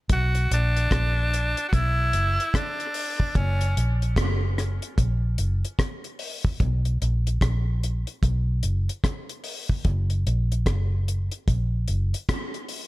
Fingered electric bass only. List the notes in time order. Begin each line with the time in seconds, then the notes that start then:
0.10 B1
0.51 A#1
0.91 A#1
1.73 B1
2.14 F#1
3.36 F#1
3.77 A#1
4.17 F#1
4.98 A#1
5.39 F#1
6.60 B1
7.02 A#1
7.42 A#1
8.23 B1
8.64 F#1
9.85 F#1
10.26 A#1
10.66 F#1
11.48 A#1
11.89 F#1